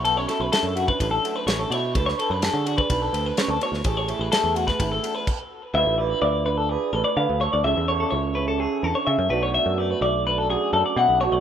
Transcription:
<<
  \new Staff \with { instrumentName = "Clean electric guitar" } { \time 4/4 \key d \lydian \tempo 4 = 126 a'16 cis''16 a'16 b'16 a'8 fis'16 b'8 a'8 b'16 cis''16 a'16 cis''8 | a'16 cis''16 a'16 b'16 a'8 fis'16 b'8 a'8 b'16 cis''16 a'16 cis''8 | a'16 cis''16 a'16 b'16 a'8 fis'16 b'8 a'8 b'16 r4 | e''8 d''16 b'16 d''8 b'16 a'16 gis'8 a'16 d''16 f''8 cis''16 d''16 |
e''8 cis''16 a'16 cis''8 b'16 a'16 gis'8 a'16 cis''16 e''8 b'16 cis''16 | e''8 d''16 b'16 d''8 b'16 a'16 gis'8 a'16 d''16 fis''8 cis''16 d''16 | }
  \new Staff \with { instrumentName = "Clean electric guitar" } { \time 4/4 \key d \lydian << { <b e'>16 cis'16 e'4 cis'4 a8 cis'8 e'8 | b'8 b'8 gis'4 b'2 | gis'8 e'8 gis'4 e'4 r4 | <f' b'>8 b'8 f'4 b'8 b'8 b'8 a'8 |
<e' a'>8 a'8 e'4 a'4. <a d' fis'>8 | d'8 a4 d'8 fis'8 d'8 e'8 <a d' fis'>8 | } \\ { b,4 d4 fis,4. b,8 | d4. d'4 a,8 cis8 b,8 | a,4. a4 e,8 r4 | d4. d'4 a,4. |
cis4. cis'4 d8 cis8 b,8~ | b,4 r4 fis,4. b,8 | } >> }
  \new Staff \with { instrumentName = "Picked electric bass" } { \clef bass \time 4/4 \key d \lydian b,,8. b,,16 r16 fis,8. a,,8 r8 a,,8 b,8 | d,8 r16 fis,8 d8. b,,8 d,8 r16 d,16 r16 d,16 | a,,8. a,,16 r16 e,8. gis,,8 r4. | d,16 a,,8. d,4. a,,16 r16 d16 d,8 d,16 |
cis,16 e,8. cis,4. e,16 r16 cis16 fis,16 b,,8~ | b,,16 fis,8. b,,4. fis,16 r16 b,16 b,,8 b,,16 | }
  \new DrumStaff \with { instrumentName = "Drums" } \drummode { \time 4/4 cymr8 <cymr sn>8 <cymr sn>8 cymr16 bd16 <bd cymr>8 cymr8 <cymr sn>8 cymr8 | <bd cymr>16 sn16 cymr8 <cymr sn>8 cymr16 bd16 <bd cymr>8 cymr8 <cymr sn>8 cymr16 sn16 | <bd cymr>8 cymr8 <cymr sn>8 cymr16 <bd sn>16 <bd cymr>8 cymr8 <cymc bd>4 | r4 r4 r4 r4 |
r4 r4 r4 r4 | r4 r4 r4 r4 | }
>>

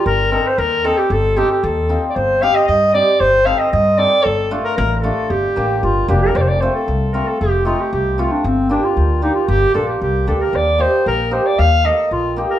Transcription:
<<
  \new Staff \with { instrumentName = "Clarinet" } { \time 2/4 \key f \mixolydian \tempo 4 = 114 bes'8 bes'16 c''16 bes'8 a'16 g'16 | a'8 g'16 g'16 a'8. r32 d''32 | c''8 f''16 ees''16 ees''8 d''8 | c''8 f''16 ees''16 ees''8 d''8 |
a'8 r16 bes'16 bes'16. bes'32 a'8 | g'4 f'8 g'16 bes'16 | d''32 c''32 d''16 c''16 a'8. bes'16 a'16 | g'8 f'16 g'16 g'8 f'16 d'16 |
c'8 d'16 f'8. ees'16 f'16 | g'8 a'16 g'16 g'8 a'16 bes'16 | d''8 c''8 bes'8 c''16 d''16 | f''8 ees''8 f'8 r16 bes'16 | }
  \new Staff \with { instrumentName = "Hammered dulcimer" } { \time 2/4 \key f \mixolydian r8 <c' ees' a'>16 r8. <c' ees' a'>16 r16 | r8 <c' ees' a'>16 r8. <c' ees' f'>16 r16 | r8 <c' ees' g'>16 r8. <c' ees' g'>16 r16 | r8 <c' ees' a'>16 r8. <c' ees' a'>16 r16 |
r8 <a d' f'>16 r8. <a d' f'>16 r16 | r8 <bes d' g'>16 r8. <bes d' g'>16 r16 | r8 <a c' f'>16 r8. <a c' f'>16 r16 | r8 <a c' ees'>16 r8. <a c' f'>16 r16 |
r8 <bes d' g'>16 r8. <bes d' g'>16 r16 | r8 <bes d' f'>16 r8. <bes d' g'>16 r16 | r8 <bes ees' g'>16 r8. <bes ees' g'>16 r16 | r8 <bes ees' a'>16 r8. <bes ees' g'>16 r16 | }
  \new Staff \with { instrumentName = "Upright bass" } { \clef bass \time 2/4 \key f \mixolydian g,,4 ees,4 | g,,4 ees,4 | g,,4 g,4 | g,,4 g,4 |
g,,4 a,,4 | g,,8 a,,8 g,,8 f,,8 | f,,4 c,4 | f,,4 c,4 |
g,,4 d,4 | g,,8 bes,,8 c,8 d,8 | ees,4 bes,,4 | ees,4 bes,,4 | }
>>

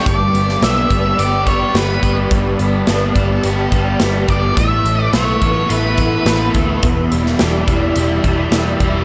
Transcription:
<<
  \new Staff \with { instrumentName = "Lead electric guitar" } { \time 4/4 \key g \major \tempo 4 = 106 d''4 e''4 d''8 cis''8 b'8. r16 | r2. r8 d''8 | e''4 cis''4 b'4. r8 | r1 | }
  \new Staff \with { instrumentName = "String machine" } { \time 4/4 \key g \major << { b''1 | a''1 | b''1~ | b''1 | } \\ { <g' b' d''>1~ | <g' b' d''>1 | <a' b' e''>1 | <g' d'' e''>1 | } >> }
  \new Staff \with { instrumentName = "Overdriven electric guitar" } { \time 4/4 \key g \major g,4 b8 d'8 g'8 d'8 g8 b8 | g,4 b8 d'8 g'8 d'8 g8 b8 | a,4 a8 b8 e'8 b8 e8 a8 | e,4 g8 d'8 e'8 d'8 e8 g8 | }
  \new Staff \with { instrumentName = "Overdriven electric guitar" } { \time 4/4 \key g \major g,8 b8 d'8 g8 b8 g8 b8 g'8 | g,8 b8 d'8 g8 b8 g8 b8 g'8 | a,8 a8 b8 e8 a8 e8 a8 e'8 | e,8 g8 d'8 e8 g8 e8 g8 e'8 | }
  \new Staff \with { instrumentName = "Picked electric bass" } { \clef bass \time 4/4 \key g \major g,,8 g,,8 b,,8 g,,8 g,,4 g,,8 g,,8 | g,,8 g,,8 g,,8 g,,8 g,,8 g,,8 g,,8 g,,8 | a,,8 a,,8 b,,8 a,,8 a,,4 a,,8 d,8 | e,,8 e,,8 e,,8 e,,8 e,,8 e,,8 e,,8 e,,8 | }
  \new DrumStaff \with { instrumentName = "Drums" } \drummode { \time 4/4 <hh bd>8 hh16 sn16 <hh sn>8 <hh bd>8 hh8 <hh bd>8 <hh sn>8 <hh bd>8 | <hh bd>8 hh8 <hh sn>8 <hh bd>8 hh8 <hh bd>8 <hh sn>8 <hh bd>8 | <hh bd>8 hh8 <hh sn>8 <hh bd>8 hh8 <hh bd>8 <hh sn>8 <hh bd>8 | <hh bd>8 hh16 sn16 <hh sn>8 <hh bd>8 hh8 <hh bd>8 <hh sn>8 <hh bd>8 | }
>>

